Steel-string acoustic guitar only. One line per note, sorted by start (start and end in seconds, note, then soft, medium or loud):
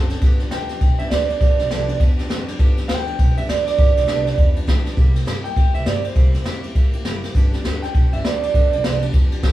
0.00 0.10 F#3 medium
0.00 0.10 C4 loud
0.10 0.23 C4 medium
0.10 0.22 D4 medium
0.10 0.21 A4 medium
0.22 0.40 G2 medium
0.22 0.40 D3 medium
0.22 0.40 F3 medium
0.22 0.40 B3 medium
0.22 0.40 D4 medium
0.22 0.39 G4 medium
0.40 0.51 F3 soft
0.40 0.52 B3 soft
0.40 0.52 D4 medium
0.40 0.51 G4 medium
0.52 0.70 G2 medium
0.52 0.70 D3 medium
0.52 0.70 F3 loud
0.52 0.70 B3 medium
0.52 0.69 D4 medium
0.52 0.68 G4 medium
0.69 0.79 F3 soft
0.69 0.81 B3 medium
0.69 0.82 D4 soft
0.69 0.81 G4 medium
0.80 0.99 F3 medium
0.80 0.99 B3 medium
0.80 0.99 D4 medium
0.80 0.97 G4 medium
0.99 1.10 F3 soft
0.99 1.10 B3 medium
0.99 1.11 D4 medium
0.99 1.11 G4 medium
1.10 1.29 G2 medium
1.10 1.29 D3 medium
1.10 1.29 F3 medium
1.10 1.29 B3 medium
1.10 1.28 D4 medium
1.10 1.27 G4 loud
1.28 1.40 F3 soft
1.28 1.40 B3 medium
1.28 1.41 D4 medium
1.28 1.40 G4 medium
1.40 1.58 G2 medium
1.40 1.59 D3 medium
1.40 1.59 F3 medium
1.40 1.59 B3 medium
1.40 1.59 D4 medium
1.40 1.57 G4 medium
1.58 1.70 F3 soft
1.58 1.70 B3 medium
1.58 1.71 D4 soft
1.58 1.70 G4 medium
1.70 1.88 G2 medium
1.70 1.88 D3 loud
1.70 1.89 F3 loud
1.70 1.88 B3 loud
1.70 1.87 D4 loud
1.70 1.86 G4 medium
1.87 1.98 F3 medium
1.87 1.99 B3 medium
1.87 2.00 D4 medium
1.87 1.99 G4 medium
2.00 2.18 F3 medium
2.00 2.18 B3 medium
2.00 2.18 D4 medium
2.00 2.16 G4 medium
2.17 2.29 F3 soft
2.17 2.29 B3 medium
2.17 2.30 D4 medium
2.17 2.29 G4 medium
2.29 2.47 G2 medium
2.29 2.48 D3 loud
2.29 2.48 F3 medium
2.29 2.48 B3 medium
2.29 2.47 D4 loud
2.29 2.46 G4 loud
2.47 2.58 F3 medium
2.47 2.58 B3 medium
2.47 2.59 D4 medium
2.47 2.59 G4 medium
2.58 2.77 G2 medium
2.58 2.77 D3 medium
2.58 2.77 F3 medium
2.58 2.77 B3 medium
2.58 2.77 D4 medium
2.58 2.75 G4 loud
2.76 2.88 F3 soft
2.76 2.88 B3 soft
2.76 2.89 D4 medium
2.76 2.89 G4 medium
2.88 3.07 G2 medium
2.88 3.07 D3 medium
2.88 3.07 F3 medium
2.88 3.07 B3 medium
2.88 3.06 D4 medium
2.88 3.05 G4 medium
3.06 3.16 F3 soft
3.06 3.17 B3 soft
3.06 3.18 D4 medium
3.06 3.18 G4 medium
3.17 3.36 F3 medium
3.17 3.37 B3 medium
3.17 3.36 D4 medium
3.17 3.35 G4 medium
3.36 3.48 F3 soft
3.36 3.48 B3 medium
3.36 3.48 D4 medium
3.36 3.48 G4 medium
3.48 3.66 G2 medium
3.48 3.67 D3 medium
3.48 3.67 F3 medium
3.48 3.66 B3 medium
3.48 3.65 D4 medium
3.48 3.64 G4 medium
3.65 3.77 F3 soft
3.65 3.77 B3 soft
3.65 3.78 D4 medium
3.65 3.78 G4 medium
3.77 3.96 G2 medium
3.77 3.96 D3 medium
3.77 3.96 F3 medium
3.77 3.96 B3 medium
3.77 3.95 D4 medium
3.77 3.94 G4 medium
3.95 4.07 F3 soft
3.95 4.07 B3 soft
3.95 4.07 D4 soft
3.95 4.07 G4 medium
4.06 4.25 G2 medium
4.06 4.26 D3 loud
4.06 4.26 F3 loud
4.06 4.25 B3 loud
4.06 4.24 D4 loud
4.06 4.23 G4 loud
4.24 4.35 F3 soft
4.24 4.36 B3 medium
4.24 4.37 D4 medium
4.24 4.37 G4 medium
4.36 4.55 F3 medium
4.36 4.55 B3 medium
4.36 4.55 D4 medium
4.36 4.54 G4 medium
4.55 4.66 F3 medium
4.55 4.66 B3 medium
4.55 4.67 D4 medium
4.55 4.67 G4 medium
4.66 4.85 G2 medium
4.66 4.85 D3 loud
4.66 4.85 F3 medium
4.66 4.86 B3 loud
4.66 4.85 D4 loud
4.66 4.84 G4 loud
4.85 4.97 F3 medium
4.85 4.97 B3 soft
4.85 4.97 D4 medium
4.85 4.97 G4 medium
4.97 5.15 C3 medium
4.97 5.15 G3 medium
4.97 5.15 A#3 medium
4.97 5.15 E4 medium
4.97 5.13 G4 medium
5.14 5.25 A#3 soft
5.14 5.26 E4 medium
5.14 5.26 G4 medium
5.26 5.44 C3 loud
5.26 5.45 G3 loud
5.26 5.45 A#3 loud
5.26 5.45 E4 loud
5.26 5.43 G4 loud
5.44 5.56 A#3 soft
5.44 5.56 E4 medium
5.44 5.56 G4 medium
5.56 5.74 G3 soft
5.56 5.75 A#3 medium
5.56 5.73 E4 medium
5.56 5.72 G4 medium
5.73 5.85 A#3 soft
5.73 5.85 E4 soft
5.73 5.85 G4 soft
5.85 6.04 C3 medium
5.85 6.04 G3 medium
5.85 6.04 A#3 medium
5.85 6.03 E4 medium
5.85 6.02 G4 loud
6.03 6.15 A#3 soft
6.03 6.15 E4 soft
6.03 6.15 G4 medium
6.15 6.34 C3 medium
6.15 6.34 G3 medium
6.15 6.34 A#3 medium
6.15 6.33 E4 medium
6.15 6.32 G4 medium
6.33 6.45 A#3 soft
6.33 6.45 E4 soft
6.33 6.45 G4 soft
6.44 6.63 C3 loud
6.44 6.64 G3 medium
6.44 6.64 A#3 loud
6.44 6.64 E4 medium
6.44 6.62 G4 loud
6.63 6.75 A#3 medium
6.63 6.76 E4 medium
6.63 6.75 G4 medium
6.75 6.93 G3 medium
6.75 6.94 A#3 medium
6.75 6.93 E4 medium
6.75 6.92 G4 medium
6.94 7.05 A#3 medium
6.94 7.05 E4 medium
6.94 7.05 G4 medium
7.05 7.23 C3 medium
7.05 7.24 G3 medium
7.05 7.24 A#3 loud
7.05 7.23 E4 loud
7.05 7.21 G4 medium
7.22 7.36 A#3 soft
7.22 7.35 E4 medium
7.22 7.34 G4 medium
7.35 7.53 G2 medium
7.35 7.53 D3 medium
7.35 7.53 F3 medium
7.35 7.53 B3 medium
7.35 7.52 D4 medium
7.35 7.51 G4 medium
7.52 7.64 F3 soft
7.52 7.64 B3 medium
7.52 7.65 D4 medium
7.52 7.64 G4 medium
7.64 7.82 G2 loud
7.64 7.83 D3 loud
7.64 7.83 F3 loud
7.64 7.83 B3 loud
7.64 7.82 D4 medium
7.64 7.81 G4 loud
7.82 7.93 F3 medium
7.82 7.94 B3 medium
7.82 7.95 D4 medium
7.82 7.94 G4 medium
7.94 8.12 F3 medium
7.94 8.13 B3 medium
7.94 8.12 D4 medium
7.94 8.11 G4 medium
8.12 8.24 F3 soft
8.12 8.24 B3 soft
8.12 8.24 D4 medium
8.12 8.24 G4 medium
8.24 8.42 G2 medium
8.24 8.42 D3 medium
8.24 8.43 F3 medium
8.24 8.43 B3 medium
8.24 8.43 D4 medium
8.24 8.42 G4 medium
8.43 8.54 F3 soft
8.43 8.54 B3 medium
8.43 8.55 D4 medium
8.43 8.54 G4 medium
8.54 8.72 G2 medium
8.54 8.72 D3 medium
8.54 8.72 F3 medium
8.54 8.72 B3 medium
8.54 8.73 D4 medium
8.54 8.71 G4 medium
8.73 8.84 F3 soft
8.73 8.84 B3 soft
8.73 8.84 D4 medium
8.73 8.84 G4 medium
8.84 9.02 G2 medium
8.84 9.02 D3 medium
8.84 9.02 F3 medium
8.84 9.03 B3 loud
8.84 9.02 D4 loud
8.84 9.01 G4 loud
9.02 9.12 F3 medium
9.02 9.13 B3 medium
9.02 9.14 D4 medium
9.02 9.13 G4 medium
9.13 9.31 F3 medium
9.13 9.31 B3 medium
9.13 9.31 D4 medium
9.13 9.29 G4 medium
9.31 9.43 F3 medium
9.31 9.43 B3 medium
9.31 9.43 D4 medium
9.31 9.43 G4 medium
9.44 9.52 G2 medium
9.44 9.52 D3 medium
9.44 9.52 F3 medium
9.44 9.52 B3 medium
9.44 9.52 D4 loud
9.44 9.52 G4 medium